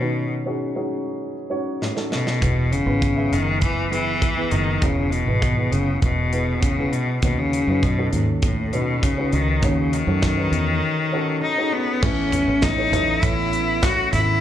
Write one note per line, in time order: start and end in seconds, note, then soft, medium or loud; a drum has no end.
0.00 0.32 B2 medium
0.00 0.87 D#3 soft
0.00 0.46 C#4 medium
0.00 0.46 D#4 medium
0.00 0.47 F#4 medium
0.00 1.96 A4 medium
0.00 2.41 B4 medium
0.46 0.69 C#4 medium
0.46 0.69 D#4 medium
0.46 0.69 F#4 medium
0.46 0.69 G#4 medium
0.76 1.33 C#4 medium
0.76 1.33 D#4 medium
0.76 1.33 F#4 medium
0.76 1.33 G#4 medium
1.50 1.85 C#4 medium
1.50 1.85 D#4 medium
1.50 1.85 F#4 medium
1.50 1.85 C#5 medium
1.82 1.96 A2 medium
1.82 snare soft
1.95 2.30 C#4 medium
1.95 2.30 D#4 medium
1.95 2.31 F#4 soft
1.95 2.31 A4 medium
1.95 snare soft
2.12 2.74 B2 medium
2.12 snare medium
2.27 snare medium
2.41 2.84 E1 medium
2.41 3.28 E3 soft
2.41 2.75 B3 medium
2.41 2.76 E4 soft
2.41 2.76 G#4 soft
2.41 2.76 B4 medium
2.41 kick medium
2.41 closed hi-hat medium
2.72 3.34 C#3 medium
2.72 closed hi-hat medium
2.86 3.28 G#1 medium
2.86 3.09 B3 medium
2.86 3.09 E4 medium
2.86 3.09 G#4 medium
2.86 3.10 B4 medium
3.02 kick medium
3.02 closed hi-hat medium
3.16 3.74 B3 medium
3.16 3.74 G#4 medium
3.16 3.74 B4 medium
3.16 3.73 E5 medium
3.32 4.48 F#1 medium
3.32 3.62 D#3 medium
3.32 closed hi-hat medium
3.61 3.90 E3 medium
3.61 kick medium
3.61 closed hi-hat medium
3.91 4.53 E3 medium
3.91 4.26 B3 medium
3.91 4.26 E4 medium
3.91 4.26 G#4 medium
3.91 4.26 B4 medium
3.91 closed hi-hat medium
4.22 kick medium
4.22 closed hi-hat medium
4.37 4.71 B3 medium
4.37 4.71 E4 soft
4.37 4.72 G#4 medium
4.37 4.72 B4 medium
4.51 4.80 F#1 medium
4.51 4.84 D#3 medium
4.51 closed hi-hat medium
4.82 5.24 E1 medium
4.82 5.13 C#3 medium
4.82 5.68 E3 medium
4.82 5.16 B3 medium
4.82 5.16 E4 medium
4.82 5.17 G#4 medium
4.82 5.17 C#5 medium
4.82 kick loud
4.82 closed hi-hat medium
5.11 5.73 B2 medium
5.11 closed hi-hat medium
5.27 5.69 G#1 medium
5.27 5.50 B3 medium
5.27 5.50 E4 medium
5.27 5.50 G#4 medium
5.27 5.50 B4 medium
5.42 kick medium
5.42 closed hi-hat medium
5.57 6.14 B3 medium
5.57 6.14 E4 medium
5.57 6.15 G#4 medium
5.57 6.15 B4 medium
5.72 6.00 F#1 medium
5.72 6.02 C#3 medium
5.72 closed hi-hat medium
6.02 6.89 E1 medium
6.02 6.63 B2 medium
6.02 kick medium
6.02 closed hi-hat medium
6.32 6.67 B3 medium
6.32 6.67 E4 medium
6.32 6.67 G#4 medium
6.32 6.67 B4 medium
6.32 closed hi-hat medium
6.61 6.94 C#3 medium
6.61 kick medium
6.61 closed hi-hat medium
6.78 7.12 B3 medium
6.78 7.12 E4 medium
6.78 7.12 G#4 medium
6.78 7.12 B4 medium
6.92 7.22 B2 medium
6.92 closed hi-hat medium
7.22 7.65 D#2 medium
7.22 7.41 B2 medium
7.22 8.09 D#3 medium
7.22 7.58 C#4 medium
7.22 7.58 D#4 medium
7.22 7.58 F#4 medium
7.22 7.58 B4 medium
7.22 kick medium
7.22 closed hi-hat medium
7.39 7.85 C#3 medium
7.53 closed hi-hat medium
7.67 8.10 F#2 medium
7.67 7.91 C#4 medium
7.67 7.92 D#4 medium
7.67 7.92 F#4 medium
7.67 7.92 B4 medium
7.83 8.12 B2 medium
7.83 kick medium
7.83 closed hi-hat medium
7.98 8.55 C#4 medium
7.98 8.55 D#4 medium
7.98 8.55 F#4 medium
7.98 8.55 A4 medium
8.12 9.29 D#2 medium
8.12 8.26 G#2 medium
8.12 closed hi-hat medium
8.42 8.75 A2 medium
8.42 kick medium
8.42 closed hi-hat medium
8.73 9.05 B2 medium
8.73 9.07 C#4 medium
8.73 9.07 D#4 medium
8.73 9.07 F#4 medium
8.73 9.08 B4 medium
8.73 closed hi-hat medium
9.03 9.37 C#3 medium
9.03 kick medium
9.03 closed hi-hat medium
9.18 9.52 C#4 medium
9.18 9.52 D#4 medium
9.18 9.52 F#4 medium
9.18 9.53 B4 medium
9.32 9.61 C#2 medium
9.32 9.66 D#3 medium
9.32 closed hi-hat medium
9.62 10.05 D#2 medium
9.62 9.95 C#3 medium
9.62 10.50 D#3 medium
9.62 9.97 C#4 medium
9.62 9.97 D#4 medium
9.62 9.98 F#4 medium
9.62 9.98 C#5 medium
9.62 kick medium
9.62 closed hi-hat medium
9.93 11.42 D#3 medium
9.93 closed hi-hat medium
10.07 10.50 F#2 medium
10.07 10.31 C#4 medium
10.07 10.31 D#4 medium
10.07 10.31 F#4 medium
10.07 10.31 A4 medium
10.22 kick medium
10.22 snare medium
10.22 clap medium
10.22 closed hi-hat medium
10.37 10.95 C#4 medium
10.37 10.95 D#4 medium
10.37 10.95 F#4 medium
10.37 10.95 B4 medium
10.52 10.80 E2 medium
10.52 closed hi-hat medium
11.12 11.47 C#4 medium
11.12 11.47 D#4 medium
11.12 11.47 F#4 medium
11.12 11.48 A4 medium
11.43 11.75 D#4 medium
11.58 11.92 C#4 medium
11.58 11.92 D#4 medium
11.58 11.93 F#4 medium
11.58 11.93 G#4 medium
11.73 12.04 B3 medium
12.02 12.45 A1 loud
12.02 12.33 A2 medium
12.02 12.89 A2 medium
12.02 12.33 A3 medium
12.02 12.32 B3 medium
12.02 12.60 C#4 medium
12.02 12.65 C#4 medium
12.02 12.33 C#4 medium
12.02 12.60 E4 medium
12.02 12.30 E4 medium
12.02 12.60 A4 medium
12.02 12.60 B4 medium
12.02 kick loud
12.02 crash medium
12.31 12.62 B3 medium
12.31 12.61 C#4 soft
12.31 12.62 E4 medium
12.31 closed hi-hat medium
12.31 floor tom medium
12.48 12.90 A1 medium
12.61 12.92 A3 medium
12.61 12.92 B3 medium
12.61 12.93 C#4 medium
12.61 13.25 D#4 medium
12.61 12.90 E4 medium
12.61 kick loud
12.61 snare medium
12.61 clap medium
12.61 closed hi-hat medium
12.78 12.90 C#4 medium
12.78 12.90 E4 medium
12.78 12.90 A4 medium
12.78 12.90 C#5 medium
12.92 13.21 A1 medium
12.92 13.84 E3 medium
12.92 13.22 B3 medium
12.92 13.84 C#4 medium
12.92 13.21 C#4 soft
12.92 13.22 E4 medium
12.92 13.84 A4 medium
12.92 13.84 C#5 medium
12.92 closed hi-hat medium
12.92 floor tom medium
13.22 14.09 A1 medium
13.22 13.53 A2 medium
13.22 13.53 A3 medium
13.22 13.52 B3 medium
13.22 13.53 C#4 medium
13.22 13.50 E4 medium
13.22 13.85 E4 medium
13.22 kick loud
13.22 closed hi-hat medium
13.51 13.83 B3 medium
13.51 13.82 C#4 soft
13.51 13.82 E4 medium
13.51 closed hi-hat medium
13.81 14.12 A3 medium
13.81 14.12 B3 medium
13.81 14.13 C#4 medium
13.81 14.11 E4 medium
13.81 14.13 F#4 medium
13.81 kick loud
13.81 snare loud
13.81 clap medium
13.81 closed hi-hat medium
14.12 14.40 G#1 medium
14.12 14.40 B3 medium
14.12 14.40 C#4 soft
14.12 14.40 E4 soft
14.12 14.40 E4 medium
14.12 snare soft
14.12 closed hi-hat medium
14.12 floor tom medium